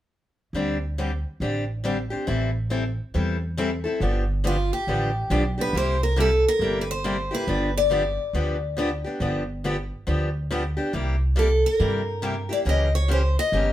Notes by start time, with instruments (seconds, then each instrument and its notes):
0.53 upright bass D2, steel-string acoustic guitar D3 G3 C4 D4 G4
0.98 steel-string acoustic guitar D3 G3 C4 D4 G4
1.40 upright bass A1, steel-string acoustic guitar D3 G3 C4 D4 G4
1.84 steel-string acoustic guitar D3 G3 C4 D4 G4
2.10 steel-string acoustic guitar C4 D4 G4
2.27 upright bass A1, steel-string acoustic guitar E3 G3 C4 E4 A4
2.70 steel-string acoustic guitar E3 G3 C4 E4 A4
3.14 upright bass E2, steel-string acoustic guitar E3 G3 C4 E4 A4
3.57 steel-string acoustic guitar E3 G3 C4 E4 A4
3.84 steel-string acoustic guitar C4 E4 A4
4.00 upright bass G1, steel-string acoustic guitar D3 F3 B3 D4 G4
4.44 steel-string acoustic guitar D3 F3 B3 D4 F4 G4
4.73 steel-string acoustic guitar G4
4.87 upright bass A1, steel-string acoustic guitar D3 F3 B3 D4 G4
5.30 upright bass B1, steel-string acoustic guitar D3 F3 B3 D4 G4
5.58 steel-string acoustic guitar B3 D4 G4 B4
5.73 upright bass C2, steel-string acoustic guitar C3 G3 A#3 E4 G4
5.77 steel-string acoustic guitar C5
6.03 steel-string acoustic guitar A#4
6.16 steel-string acoustic guitar C3 G3 A#3 E4 G4
6.20 steel-string acoustic guitar A4
6.48 steel-string acoustic guitar A#4
6.59 upright bass G1, steel-string acoustic guitar C3 G3 A#3 E4 G4
6.81 steel-string acoustic guitar B4
6.91 steel-string acoustic guitar C5
7.04 steel-string acoustic guitar C3 G3 A#3 E4 G4
7.31 steel-string acoustic guitar A#3 E4 G4 B4
7.47 upright bass G1, steel-string acoustic guitar D3 F3 B3 D4 G4
7.77 steel-string acoustic guitar D5
7.90 steel-string acoustic guitar D3 F3 B3 D4 G4
8.33 upright bass D2, steel-string acoustic guitar D3 F3 B3 D4 G4
8.77 steel-string acoustic guitar D3 F3 B3 D4 G4
9.04 steel-string acoustic guitar B3 D4 G4
9.20 upright bass G1, steel-string acoustic guitar D3 F3 B3 D4 G4
9.64 steel-string acoustic guitar D3 F3 B3 D4 G4
10.07 upright bass D2, steel-string acoustic guitar D3 F3 B3 D4 G4
10.51 steel-string acoustic guitar D3 F3 B3 D4 G4
10.77 steel-string acoustic guitar B3 D4 G4
10.93 upright bass C2, steel-string acoustic guitar C3 G3 A#3 E4 G4
11.36 steel-string acoustic guitar C3 G3 A#3 E4 G4 A4
11.66 steel-string acoustic guitar A#4
11.79 upright bass G2, steel-string acoustic guitar C3 G3 A#3 E4 G4
12.22 steel-string acoustic guitar C3 G3 A#3 E4 G4
12.49 steel-string acoustic guitar A#3 E4 G4 D5
12.65 upright bass C#2, steel-string acoustic guitar C#3 E3 A#3 C#4 G4 D#5
12.95 steel-string acoustic guitar C#5
13.08 steel-string acoustic guitar C#3 E3 A#3 C#4 G4 C5
13.39 steel-string acoustic guitar D#5
13.52 upright bass G1, steel-string acoustic guitar C#3 E3 A#3 C#4 G4